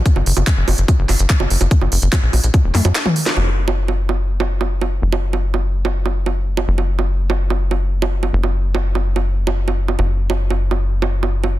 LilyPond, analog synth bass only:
\new Staff \with { instrumentName = "Analog synth bass" } { \clef bass \time 4/4 \key fis \major \tempo 4 = 145 r16 fis,,16 fis,,16 fis,,16 r16 fis,,16 fis,,16 fis,,16 r16 fis,,16 fis,,16 fis,,16 r16 fis,,16 fis,,16 fis,,16 | r16 fis,,16 fis,,16 fis,,16 r16 ais,,16 ais,,16 ais,,16 r16 e,,16 fis,16 fis,16 r4 | fis,,1 | fis,,1 |
fis,,1 | fis,,1 | fis,,1 | }